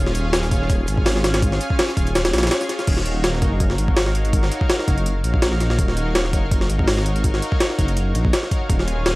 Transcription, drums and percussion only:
0.06 snare
0.15 closed hi-hat, shaker
0.33 snare, closed hi-hat, shaker
0.43 snare, closed hi-hat
0.51 kick, closed hi-hat, shaker
0.62 snare
0.70 kick, closed hi-hat, shaker
0.87 closed hi-hat, shaker
0.97 kick
1.06 snare, open hi-hat, shaker
1.16 snare
1.24 snare, closed hi-hat, shaker
1.34 snare, closed hi-hat
1.42 kick, closed hi-hat, shaker
1.52 snare
1.61 closed hi-hat, shaker
1.70 kick
1.79 snare, closed hi-hat, open hi-hat
1.88 snare, closed hi-hat
1.97 kick, closed hi-hat, shaker
2.07 closed hi-hat
2.15 snare, closed hi-hat, shaker
2.25 snare, closed hi-hat
2.33 snare, closed hi-hat, shaker
2.38 snare, closed hi-hat
2.43 snare, closed hi-hat
2.47 snare, closed hi-hat
2.51 snare, closed hi-hat, shaker
2.60 snare, shaker
2.69 snare, closed hi-hat
2.79 snare, shaker
2.87 kick, closed hi-hat, crash
2.97 snare
3.06 closed hi-hat
3.24 snare, closed hi-hat
3.34 snare
3.42 kick, closed hi-hat
3.60 kick, closed hi-hat
3.70 snare
3.78 closed hi-hat
3.88 kick
3.97 snare, open hi-hat
4.06 snare
4.15 closed hi-hat
4.25 closed hi-hat
4.33 kick, closed hi-hat
4.43 snare
4.52 closed hi-hat
4.61 kick
4.70 snare, closed hi-hat
4.79 snare
4.88 kick, closed hi-hat
4.98 closed hi-hat
5.06 closed hi-hat
5.24 closed hi-hat
5.34 kick
5.42 snare, closed hi-hat
5.52 snare
5.60 snare, closed hi-hat
5.70 snare
5.79 kick, closed hi-hat
5.88 snare
5.97 closed hi-hat
6.15 snare, closed hi-hat
6.25 snare
6.33 kick, closed hi-hat
6.51 kick, closed hi-hat
6.61 snare
6.70 closed hi-hat
6.79 kick
6.88 snare, open hi-hat
6.97 snare
7.06 closed hi-hat
7.16 closed hi-hat
7.24 kick, closed hi-hat
7.34 snare
7.42 closed hi-hat
7.52 kick
7.60 snare, closed hi-hat
7.70 snare
7.79 kick, closed hi-hat
7.88 closed hi-hat
7.97 closed hi-hat
8.15 closed hi-hat
8.25 kick
8.33 snare, closed hi-hat
8.43 snare
8.51 kick, closed hi-hat
8.70 kick, closed hi-hat
8.79 snare
8.88 closed hi-hat
9.06 snare, closed hi-hat

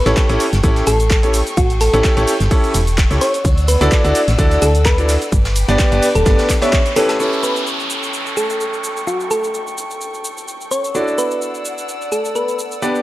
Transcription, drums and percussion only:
0.06 snare, closed hi-hat, shaker
0.17 kick, snare, clap, closed hi-hat, ride, shaker
0.29 closed hi-hat, shaker
0.40 open hi-hat, ride, shaker
0.53 snare, closed hi-hat, shaker
0.64 kick, closed hi-hat, ride, shaker
0.76 snare, closed hi-hat, shaker
0.87 open hi-hat, ride, shaker
1.00 closed hi-hat, shaker
1.10 kick, snare, clap, closed hi-hat, ride, shaker
1.23 closed hi-hat, ride, shaker
1.34 open hi-hat, ride, shaker
1.47 closed hi-hat, shaker
1.57 kick, closed hi-hat, ride, shaker
1.70 closed hi-hat, shaker
1.81 snare, open hi-hat, ride, shaker
1.94 closed hi-hat, shaker
2.04 kick, snare, clap, closed hi-hat, ride, shaker
2.17 closed hi-hat, shaker
2.28 open hi-hat, ride, shaker
2.40 snare, closed hi-hat, shaker
2.51 kick, closed hi-hat, open hi-hat, shaker
2.64 closed hi-hat, ride, shaker
2.74 open hi-hat, ride, shaker
2.87 closed hi-hat, shaker
2.98 kick, snare, clap, closed hi-hat, ride, shaker
3.11 snare, closed hi-hat, shaker
3.21 snare, open hi-hat, ride, shaker
3.34 closed hi-hat, shaker
3.45 kick, closed hi-hat, ride, shaker
3.58 closed hi-hat, shaker
3.68 open hi-hat, ride, shaker
3.81 snare, closed hi-hat, shaker
3.91 kick, snare, clap, closed hi-hat, ride, shaker
4.04 closed hi-hat, shaker
4.15 open hi-hat, ride, shaker
4.28 snare, closed hi-hat, shaker
4.38 kick, closed hi-hat, ride, shaker
4.51 snare, closed hi-hat, shaker
4.62 open hi-hat, ride, shaker
4.75 closed hi-hat, shaker
4.85 kick, snare, clap, closed hi-hat, ride, shaker
4.98 closed hi-hat, ride, shaker
5.09 snare, open hi-hat, ride, shaker
5.22 closed hi-hat, shaker
5.32 kick, closed hi-hat, ride, shaker
5.45 snare, closed hi-hat, ride, shaker
5.56 open hi-hat, shaker
5.69 closed hi-hat, ride, shaker
5.79 kick, snare, clap, closed hi-hat, ride, shaker
5.92 closed hi-hat, shaker
6.03 open hi-hat, ride, shaker
6.15 closed hi-hat, shaker
6.25 kick, snare, closed hi-hat, ride, shaker
6.39 snare, closed hi-hat, ride, shaker
6.49 kick, snare, clap, open hi-hat, ride, shaker
6.61 snare, closed hi-hat, ride, shaker
6.73 kick, snare, clap, closed hi-hat, ride, shaker
6.86 closed hi-hat, ride, shaker
6.96 open hi-hat, ride, shaker
7.09 snare, closed hi-hat, ride, shaker
7.20 shaker
7.33 shaker
7.43 shaker
7.56 shaker
7.67 shaker
7.80 shaker
7.90 shaker
8.03 shaker
8.14 shaker
8.26 shaker
8.37 shaker
8.50 shaker
8.61 shaker
8.73 shaker
8.84 shaker
8.97 shaker
9.07 shaker
9.20 shaker
9.31 shaker
9.44 shaker
9.54 shaker
9.67 shaker
9.78 shaker
9.91 shaker
10.01 shaker
10.14 shaker
10.25 shaker
10.37 shaker
10.48 shaker
10.61 shaker
10.72 shaker
10.84 shaker
10.95 shaker
11.08 shaker
11.18 shaker
11.31 shaker
11.42 shaker
11.55 shaker
11.65 shaker
11.78 shaker
11.89 shaker
12.01 shaker
12.12 shaker
12.25 shaker
12.36 shaker
12.48 shaker
12.59 shaker
12.72 shaker
12.82 shaker
12.95 shaker

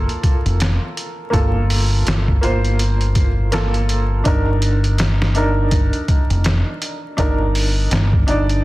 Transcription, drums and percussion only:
0.09 closed hi-hat
0.23 kick, closed hi-hat
0.46 closed hi-hat
0.60 snare, closed hi-hat
0.97 closed hi-hat
1.33 kick, closed hi-hat
1.70 open hi-hat
2.07 snare, closed hi-hat
2.28 kick
2.43 closed hi-hat
2.65 closed hi-hat
2.79 closed hi-hat
3.01 closed hi-hat
3.15 kick, closed hi-hat
3.52 snare, closed hi-hat
3.74 closed hi-hat
3.89 closed hi-hat
4.25 kick, closed hi-hat
4.62 closed hi-hat
4.84 closed hi-hat
4.98 snare, closed hi-hat
5.22 snare
5.35 closed hi-hat
5.71 kick, closed hi-hat
5.93 closed hi-hat
6.08 kick, closed hi-hat
6.30 closed hi-hat
6.44 snare, closed hi-hat
6.82 closed hi-hat
7.18 kick, closed hi-hat
7.55 open hi-hat
7.91 snare, closed hi-hat
8.13 kick
8.28 closed hi-hat
8.49 closed hi-hat

